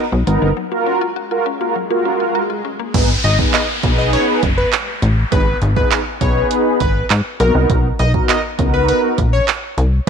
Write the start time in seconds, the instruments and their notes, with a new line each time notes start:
0.12 analog synth bass B1, synth arpeggio sound D#4
0.27 analog synth bass G#1, analog polysynth B3 D#4 A#4, synth arpeggio sound B3, closed hi-hat
0.42 analog synth bass G1, synth arpeggio sound A#3
0.57 synth arpeggio sound F#3, swell
0.71 synth arpeggio sound A#3, analog polysynth F4 F#4 A#4
0.86 synth arpeggio sound C#4
1.01 synth arpeggio sound F4
1.16 synth arpeggio sound F#4
1.31 analog polysynth F4 F#4 A#4, synth arpeggio sound F4
1.46 synth arpeggio sound C#4
1.60 synth arpeggio sound A#3, analog polysynth F4 F#4 A#4
1.76 synth arpeggio sound F#3
1.90 synth arpeggio sound A#3, analog polysynth F4 F#4 A#4
2.05 synth arpeggio sound C#4
2.20 synth arpeggio sound F4
2.35 synth arpeggio sound F#4
2.50 synth arpeggio sound F4
2.65 synth arpeggio sound C#4
2.80 synth arpeggio sound A#3
2.94 analog synth bass G#1, analog polysynth B3 D#4 G#4 B4, kick, closed hi-hat, crash, downlifter
3.24 analog synth bass G#1, analog polysynth G#4 A#4, digital synth lead D#5, closed hi-hat
3.39 analog polysynth B3 D#4 G#4 B4, kick
3.54 digital synth lead D#5, clap, closed hi-hat
3.83 analog synth bass B1, analog polysynth B3 D#4 G#4 B4, kick, closed hi-hat
3.98 digital synth lead D#5
4.13 digital synth lead C#5, closed hi-hat
4.43 analog synth bass F#1, kick, closed hi-hat
4.58 digital synth lead B4
4.73 clap, closed hi-hat
5.02 analog synth bass A1, closed hi-hat
5.32 analog synth bass G#1, analog polysynth B3 D#4 G#4 B4, digital synth lead B4, kick, closed hi-hat
5.62 analog synth bass G#1, analog polysynth G#4 B4, closed hi-hat
5.76 analog polysynth B3 D#4 G#4 B4, digital synth lead B4, kick
5.91 clap, closed hi-hat
6.21 analog synth bass B1, analog polysynth B3 D#4 G#4 B4, digital synth lead C#5, kick, closed hi-hat
6.51 closed hi-hat
6.80 analog synth bass G#1, digital synth lead B4, kick, closed hi-hat
7.10 analog synth bass G#2, clap, closed hi-hat
7.40 analog synth bass B1, analog polysynth B3 D#4 F#4 A#4, digital synth lead A#4, closed hi-hat
7.55 analog synth bass C2
7.70 analog synth bass B1, kick, closed hi-hat
7.99 analog synth bass B1, analog polysynth F#4 A#4, digital synth lead D#5, closed hi-hat
8.14 analog polysynth B3 D#4 F#4 A#4, kick
8.29 digital synth lead D#5, clap, closed hi-hat
8.58 analog synth bass C#2, analog polysynth B3 D#4 F#4 A#4, kick, closed hi-hat
8.74 digital synth lead B4
8.88 digital synth lead B4, closed hi-hat
9.18 analog synth bass A#1, kick, closed hi-hat
9.33 digital synth lead C#5
9.48 clap, closed hi-hat
9.78 analog synth bass C2, closed hi-hat